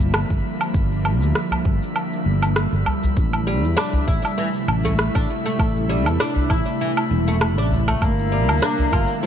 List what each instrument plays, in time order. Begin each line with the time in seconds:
Already playing: fretless electric bass G1, ambient pad D3 F3 G3 A#3, synth texture E4 E5
0.00 udu, cabasa
0.14 cross-stick, cabasa, low woodblock
0.30 fretless electric bass G1, kick, cabasa
0.61 cabasa, low woodblock
0.74 fretless electric bass G1, kick, cabasa
0.92 cabasa
1.05 low woodblock
1.21 fretless electric bass D2, cabasa
1.35 cross-stick, cabasa
1.51 udu, cabasa, low woodblock
1.65 fretless electric bass G1, kick
1.83 cabasa
1.96 cabasa, low woodblock
2.13 cabasa
2.26 fretless electric bass G1
2.42 cabasa, low woodblock
2.56 cross-stick, cabasa
2.72 fretless electric bass G1, cabasa
2.86 udu, low woodblock
3.03 udu, cabasa
3.17 fretless electric bass A1, ambient pad C3 A3 E4, kick, cabasa
3.33 cabasa, low woodblock
3.47 oud G3
3.63 fretless electric bass E2, cabasa
3.77 oud D4, cross-stick, cabasa, low woodblock
3.93 udu, cabasa
4.08 fretless electric bass A1, oud E4, kick
4.25 cabasa, low woodblock
4.38 oud E3, cabasa
4.55 cabasa
4.68 fretless electric bass A1, low woodblock
4.85 oud A3, udu, cabasa
4.99 cross-stick, cabasa
5.15 fretless electric bass A1, oud D4, kick, cabasa, low woodblock
5.46 oud A3, cabasa
5.59 fretless electric bass A1, kick, cabasa, low woodblock
5.77 cabasa
5.89 oud G3
6.06 fretless electric bass E2, cabasa, low woodblock
6.20 oud D4, cross-stick, cabasa
6.36 udu, cabasa
6.50 fretless electric bass A1, oud E4, kick, low woodblock
6.67 cabasa
6.81 oud E3, cabasa
6.97 cabasa, low woodblock
7.11 fretless electric bass E1
7.28 oud A3, cabasa
7.41 cross-stick, cabasa, low woodblock
7.58 fretless electric bass A1, oud D4, cabasa
7.71 udu
7.88 oud A3, udu, cabasa, low woodblock
8.02 fretless electric bass G1, ambient pad D3 F3, cello A#3, kick, cabasa, low woodblock
8.19 cabasa
8.32 oud G3
8.49 fretless electric bass D2, cabasa, low woodblock
8.62 oud D4, cross-stick, cabasa
8.79 udu, cabasa
8.92 fretless electric bass G1, oud F4, kick, low woodblock
9.10 cabasa
9.23 oud F3, cello A3